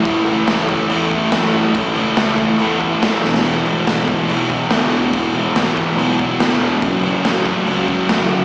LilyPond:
<<
  \new Staff \with { instrumentName = "Distorted electric guitar" } { \clef bass \time 4/4 \key a \major \tempo 4 = 142 <a, e a>8 <e a>8 <a, e a>8 <e a>8 <a, e a>8 <e a>8 <a, e a>4 | <a, e a>8 <e a>8 <a, e a>8 <e a>8 <a, e a>8 <e a>8 <a, e a>8 <e, b, e>8 | <e, b, e>8 <b, e>8 <e, b, e>8 <b, e>8 <e, b, e>8 <b, e>8 <e, b, e>4 | <e, b, e>8 <b, e>8 <e, b, e>8 <b, e>8 <e, b, e>8 <b, e>8 <e, b, e>4 |
<fis, cis fis>8 <cis fis>8 <fis, cis fis>8 <cis fis>8 <fis, cis fis>8 <cis fis>8 <fis, cis fis>4 | }
  \new Staff \with { instrumentName = "Picked electric bass" } { \clef bass \time 4/4 \key a \major a,,8 cis,8 cis,4 e,4 fis,8 fis,8 | a,,8 cis,8 cis,4 e,4 fis,,8 e,,8 | e,,8 gis,,8 gis,,4 b,,4 d,8 cis,8 | e,,8 gis,,8 gis,,4 b,,4 d,8 e,,8 |
fis,,8 a,,8 a,,4 cis,4 e,8 d,8 | }
  \new DrumStaff \with { instrumentName = "Drums" } \drummode { \time 4/4 <cymc bd>8 cymc8 <cymc sn>8 <cymc bd>8 cymc8 <cymc bd>8 <cymc sn>8 cymc8 | <cymc bd>8 cymc8 <cymc sn>8 <cymc bd>8 cymc8 <cymc bd>8 <cymc sn>8 sn16 sn16 | cymc8 cymc8 <cymc sn>8 <cymc bd>8 cymc8 <cymc bd sn>8 <cymc sn>8 cymc8 | <cymc bd>8 cymc8 <cymc sn>8 <cymc bd>8 cymc8 <cymc bd>8 <cymc sn>8 cymc8 |
<cymc bd>8 cymc8 <cymc sn>8 <cymc bd>8 cymc8 <cymc bd>8 <cymc sn>8 cymc8 | }
>>